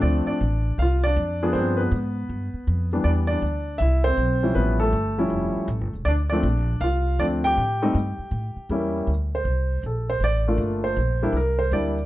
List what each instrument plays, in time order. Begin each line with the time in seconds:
Already playing: grand piano F3 A3 C4
0.02 upright bass D2, grand piano D4 D5
0.26 grand piano D4 D5, muted upright bass stroke
0.41 upright bass A1
0.78 upright bass C2, grand piano F5
0.82 grand piano F4
1.04 grand piano D4 D5
1.16 upright bass F2
1.43 grand piano F3 B3 D4 G#4
1.53 upright bass G2, grand piano C4 C5
1.77 grand piano B4
1.81 grand piano B3
1.91 upright bass G#2
2.29 upright bass G2
2.53 muted upright bass stroke
2.67 upright bass F2
2.93 grand piano E3 G3 B3 D4
3.04 upright bass E2, grand piano D4 D5
3.27 grand piano D4 D5
3.42 upright bass D2
3.78 upright bass C2, grand piano E4 E5
4.04 grand piano C4 C5
4.17 upright bass B1
4.43 grand piano F3 G3 C#4 E4
4.55 upright bass A1, grand piano B3 B4
4.80 grand piano A3 A4
4.92 upright bass G1
5.18 grand piano F3 G3 C#4 E4
5.30 upright bass F1
5.55 muted upright bass stroke
5.68 upright bass A1
5.81 upright bass G1
5.93 upright bass E1
6.05 upright bass D2, grand piano D4 D5
6.30 grand piano F3 A3 C4 D4 D5
6.43 upright bass A#1
6.80 upright bass C2, grand piano F4 F5
7.19 upright bass D2, grand piano F3 A3 C4 D4 D5
7.44 grand piano G4 G5
7.57 upright bass A2
7.82 grand piano G3 A3 C4 D#4
7.94 upright bass G2
8.18 muted upright bass stroke
8.31 upright bass A2
8.56 muted upright bass stroke
8.69 upright bass E2, grand piano G3 A#3 C#4 E4
9.07 upright bass D2
9.35 grand piano C5
9.44 upright bass C2
9.83 upright bass A#1, grand piano A4
10.10 grand piano C5
10.20 upright bass A1, grand piano D5
10.48 grand piano A3 A#3 D4 F4
10.58 upright bass G1
10.84 grand piano C5
10.96 upright bass A#1
11.23 grand piano G3 A#3 D4 E4
11.33 upright bass C2
11.37 grand piano A#4
11.59 grand piano C5
11.71 upright bass D2, grand piano G3 A#3 D4 E4 D5